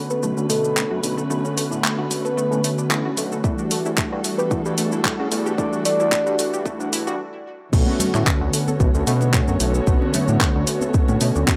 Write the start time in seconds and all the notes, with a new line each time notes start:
Already playing: D3 A3 B3 C#4 F#4 B4
0.10 A4 B4, cabasa
0.23 B1 A3, cabasa
0.37 D2 C#4, cabasa
0.49 B2 A3 A4, open hi-hat, cabasa
0.64 D4, cabasa
0.76 A3, clap, cabasa
0.91 F#2 F#4
1.03 B1 D3 A3 B3 C#4 F#4, open hi-hat, cabasa
1.18 A4, cabasa
1.29 B1 D3 A3 B3 C#4 F#4, cabasa
1.45 C#4, cabasa
1.57 A3, open hi-hat, cabasa
1.71 A2 D4, cabasa
1.84 A3, clap, cabasa
1.98 D2 F#4
2.11 A3, open hi-hat, cabasa
2.25 A4 B4, cabasa
2.37 A3, cabasa
2.51 A2 C#4, cabasa
2.64 A3, open hi-hat, cabasa
2.78 A1 D4, cabasa
2.90 A1 A3, clap, cabasa
3.05 F#4
3.17 B1 D3 A3 B3 C#4 F#4, open hi-hat, cabasa
3.32 A4, cabasa
3.43 E2 E3 G3 A3 D4 F#4 A4, kick, cabasa
3.58 D4, cabasa
3.71 A3, open hi-hat, cabasa
3.85 D2 E4, cabasa
3.98 A3, kick, clap, cabasa
4.12 G2 F#4
4.24 A3, open hi-hat, cabasa
4.38 G4 B4, cabasa
4.51 E2 A3, kick, cabasa
4.66 G2 D4, cabasa
4.78 E1 A3, open hi-hat, cabasa
4.92 E4, cabasa
5.05 A3, kick, clap, cabasa
5.20 C#3 F#4
5.31 E2 E3 G3 A3 D4 F#4, open hi-hat, cabasa
5.46 G4, cabasa
5.57 E2 E3 G3 A3 D4 F#4 D5, kick, cabasa
5.73 D4, cabasa
5.85 A3 D5, open hi-hat, cabasa
6.00 D2 E4, cabasa
6.12 A3, kick, clap, cabasa
6.26 G2 F#4, cabasa
6.39 A3, open hi-hat, cabasa
6.54 G4, cabasa
6.66 A3, kick, cabasa
6.80 D2 D4, cabasa
6.93 E1 E4, open hi-hat, cabasa
7.07 G2 F#4, cabasa
7.72 B1 D3 A3 B3 C#4 F#4 A4 C#5, kick, crash, cabasa
7.87 C#4, muted conga, high conga
8.00 A3, open hi-hat, low conga, cabasa
8.14 A2 D4, clap, cabasa
8.27 A3, kick, clap, cabasa
8.41 D2 F#4
8.53 A3, open hi-hat, cabasa
8.68 A4, high conga, cabasa
8.80 B1 A3, kick, cabasa
8.95 D2 C#4, cabasa
9.07 B2 A3, open hi-hat, cabasa
9.21 D4, muted conga, cabasa
9.33 A3, kick, clap, high conga, cabasa
9.48 F#2 F#4, cabasa
9.60 B1 D3 A3 B3 C#4 F#4, open hi-hat, cabasa
9.74 A4, cabasa
9.87 B1 D3 A3 B3 C#4 F#4, kick, cabasa
10.02 C#4, high conga
10.14 A3, open hi-hat, low conga, cabasa
10.28 A2 D4, cabasa
10.41 A3, kick, clap, cabasa
10.56 D2 F#4
10.67 A3, open hi-hat, cabasa
10.81 A4, high conga, cabasa
10.94 A3, kick, cabasa
11.08 A2 C#4, muted conga, cabasa
11.21 B2 A3, open hi-hat, cabasa
11.35 D2 D4, cabasa
11.47 A3, kick, clap, high conga, cabasa